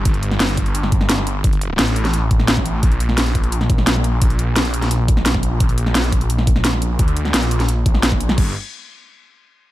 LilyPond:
<<
  \new Staff \with { instrumentName = "Detuned saw bass" } { \clef bass \time 4/4 \key g \minor \tempo 4 = 173 g,,1 | g,,4 a,,2. | bes,,1 | bes,,1 |
bes,,1 | d,4 bes,,4. bes,,4. | g,,8 r2. r8 | }
  \new DrumStaff \with { instrumentName = "Drums" } \drummode { \time 4/4 <hh bd>16 hh16 hh16 sn16 <hh sn>16 hh16 <hh bd>16 hh16 hh16 sn16 <hh bd>16 sn16 <hh sn>16 sn16 hh8 | <hh bd>16 hh16 hh8 <hh sn>16 hh16 hh16 <hh sn>16 hh8 <hh bd>16 sn16 <hh sn>16 <bd sn>16 hh8 | <hh bd>16 hh16 hh16 sn16 <hh sn>16 hh16 <hh bd>16 hh16 hh16 sn16 <hh bd>16 sn16 <hh sn>16 sn16 hh8 | <hh bd>16 hh16 hh8 <hh sn>16 hh16 hh16 <hh sn>16 hh8 <hh bd>16 sn16 <hh sn>16 <bd sn>16 hh8 |
<hh bd>16 hh16 hh16 sn16 <hh sn>16 hh16 <hh bd>16 hh16 hh16 sn16 <hh bd>16 sn16 <hh sn>16 sn16 hh8 | <hh bd>16 hh16 hh16 sn16 <hh sn>16 hh16 hh16 <hh sn>16 hh8 <hh bd>16 sn16 <hh sn>16 <bd sn>16 hh16 sn16 | <cymc bd>4 r4 r4 r4 | }
>>